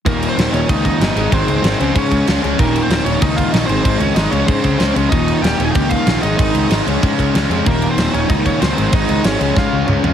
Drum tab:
CC |xxxxxxxx|xxxxxxxx|xxxxxxxx|xxxxxxxx|
SD |--o---o-|--o---o-|--o---o-|--o---o-|
T2 |--------|--------|--------|--------|
FT |--------|--------|--------|--------|
BD |o---oo--|o---oo--|o---oo--|o---oo--|

CC |xxxxxxxx|xxxxxxxx|xxxxxxxx|xxxx----|
SD |--o---o-|--o---o-|--o---o-|--o-o---|
T2 |--------|--------|--------|------o-|
FT |--------|--------|--------|-------o|
BD |o---oo--|o---oo--|o---oo--|o---o---|